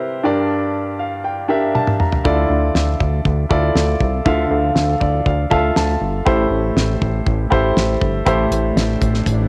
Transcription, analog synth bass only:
2.25 D2
2.50 D2
2.75 D2
3.00 D2
3.25 D2
3.51 D2
3.75 D2
4.01 C2
4.26 D2
4.51 D2
4.75 D2
5.01 D2
5.26 D2
5.51 D2
5.76 D2
6.01 G1
6.26 A1
6.51 A1
6.76 A1
7.01 A1
7.26 A1
7.52 A1
7.77 A1
8.01 G1
8.26 A1
8.51 A1
8.76 A1
9.01 A1
9.26 A1

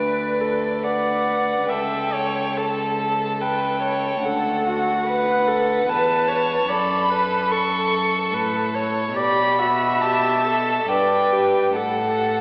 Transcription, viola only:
Already playing: B4
0.40 A4
0.85 D5
1.70 E5
2.13 C#5
2.57 A4
3.41 B4
3.83 C#5
4.25 A4
5.07 B4
5.48 A4
5.88 B4
6.28 C#5
6.68 D5
7.10 B4
7.51 A4
8.34 B4
8.75 C#5
9.16 D5
9.59 E5
10.90 D5
11.32 G4
11.76 A4

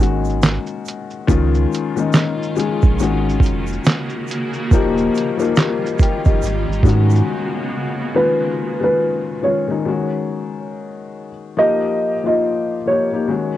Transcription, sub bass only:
Already playing: G#1
1.28 C#2
2.83 A#1
3.00 G#1
3.40 F1
4.72 D#1
6.26 F1
6.43 G#1
6.68 G#1
6.83 G#2

